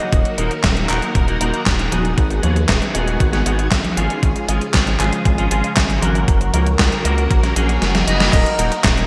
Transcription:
Already playing: string machine F#3 A#3 F#4 A#4, clean electric guitar A#3 D#4 F#4 D#5
0.00 closed hi-hat
0.12 analog synth bass D#1, string machine D#3 A#3 A#4, kick, closed hi-hat
0.25 closed hi-hat
0.38 analog synth bass D#1, clean electric guitar A#3 D#4 F#4 A#4, closed hi-hat
0.51 closed hi-hat
0.64 analog synth bass D#1, kick, snare, clap, closed hi-hat
0.77 closed hi-hat
0.89 analog synth bass D#1, clean electric guitar A#3 D#4 F#4 A#4, clap, closed hi-hat
1.02 closed hi-hat
1.15 analog synth bass D#1, kick, closed hi-hat
1.27 clean electric guitar A#3 D#4 F#4 A#4, closed hi-hat
1.40 analog synth bass D#1, clean electric guitar A#3 D#4 F#4 A#4, closed hi-hat
1.54 closed hi-hat
1.66 analog synth bass D#1, kick, snare, clap, closed hi-hat
1.79 closed hi-hat
1.92 analog synth bass D#1, clean electric guitar B3 D#4 F#4 G#4, closed hi-hat, high conga
2.05 closed hi-hat
2.18 analog synth bass G#1, string machine G#3 B3 G#4, kick, closed hi-hat
2.30 closed hi-hat
2.43 analog synth bass D#2, clean electric guitar B3 D#4 F#4 G#4, closed hi-hat, high conga
2.56 closed hi-hat
2.69 analog synth bass D#1, kick, snare, clap, closed hi-hat
2.82 closed hi-hat
2.94 analog synth bass D#1, clean electric guitar B3 D#4 F#4 G#4, closed hi-hat
3.08 closed hi-hat
3.20 analog synth bass G#1, kick, closed hi-hat
3.33 clean electric guitar B3 D#4 F#4 G#4, snare, closed hi-hat
3.46 analog synth bass G#1, clean electric guitar B3 D#4 F#4 G#4, closed hi-hat
3.59 closed hi-hat
3.72 analog synth bass G#1, kick, snare, clap, closed hi-hat
3.85 closed hi-hat, high conga
3.97 analog synth bass G#1, clean electric guitar G#3 C#4 F4 G#4, closed hi-hat
4.10 closed hi-hat
4.23 analog synth bass G#1, string machine C#3 F3 F4, kick, closed hi-hat
4.36 closed hi-hat
4.48 analog synth bass G#1, clean electric guitar G#3 C#4 F4 G#4, closed hi-hat
4.61 closed hi-hat
4.74 analog synth bass G#1, kick, snare, clap, closed hi-hat
4.87 closed hi-hat
4.99 analog synth bass G#1, clean electric guitar G#3 C#4 F4 G#4, clap, closed hi-hat
5.13 closed hi-hat
5.25 analog synth bass G#1, kick, closed hi-hat
5.38 clean electric guitar G#3 C#4 F4 G#4, closed hi-hat
5.51 analog synth bass G#1, clean electric guitar G#3 C#4 F4 G#4, closed hi-hat
5.64 closed hi-hat
5.77 analog synth bass G#1, kick, snare, clap, closed hi-hat
5.90 closed hi-hat
6.02 analog synth bass G#1, clean electric guitar A#3 C#4 F#4 A#4, closed hi-hat, high conga
6.15 closed hi-hat
6.28 analog synth bass F#1, string machine F#3 A#3 F#4 A#4, kick, closed hi-hat
6.41 closed hi-hat
6.53 analog synth bass C#2, clean electric guitar A#3 C#4 F#4 A#4, closed hi-hat, high conga
6.67 closed hi-hat
6.79 analog synth bass C#2, kick, snare, clap, closed hi-hat
6.92 closed hi-hat
7.05 analog synth bass C#2, clean electric guitar A#3 C#4 F#4 A#4, closed hi-hat
7.18 closed hi-hat
7.31 analog synth bass A#1, kick, closed hi-hat, reverse cymbal
7.43 clean electric guitar A#3 C#4 F#4 A#4, snare, closed hi-hat
7.56 analog synth bass A#1, clean electric guitar A#3 C#4 F#4 G#4, closed hi-hat
7.69 closed hi-hat
7.82 analog synth bass F#1, snare, closed hi-hat
7.95 snare, closed hi-hat, high conga
8.07 analog synth bass F#1, clean electric guitar A#3 D#4 F#4 D#5, closed hi-hat
8.20 snare, closed hi-hat
8.32 analog synth bass D#1, string machine D#3 F#3 A#3 F#4 A#4, grand piano A#4 D#5, kick, closed hi-hat, crash
8.46 closed hi-hat
8.58 analog synth bass D#1, clean electric guitar A#3 D#4 F#4 A#4, closed hi-hat
8.72 closed hi-hat
8.84 analog synth bass D#1, kick, snare, clap, closed hi-hat
8.97 closed hi-hat

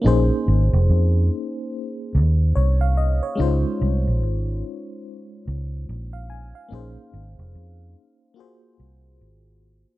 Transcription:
0.02 fm electric piano A#3 C#4 D#4
0.06 fingered electric bass A#1, fm electric piano G#4 C5
0.48 fingered electric bass G#1
0.73 fingered electric bass F1
0.90 fingered electric bass F2
2.15 fingered electric bass D#2
2.55 fingered electric bass C2, fm electric piano C#5
2.81 fm electric piano F5
2.97 fm electric piano D#5
3.23 fm electric piano C#5
3.35 fm electric piano G#3 C#4 D#4
3.40 fingered electric bass C#2, fm electric piano F4 C5
3.81 fingered electric bass C2
4.07 fingered electric bass A#1
4.23 fingered electric bass G#1
5.48 fingered electric bass C#2
5.89 fingered electric bass A#1
6.13 fm electric piano F5
6.30 fm electric piano G#5
6.55 fm electric piano F5
6.69 fingered electric bass A#1, fm electric piano A#3 C#4 D#4
6.73 fm electric piano G#4 C5
7.14 fingered electric bass G#1
7.39 fingered electric bass F1
7.55 fingered electric bass F2
8.34 fm electric piano A#3 F4 F#4
8.39 fm electric piano G#4 C5
8.79 fingered electric bass C2
9.21 fingered electric bass G#1

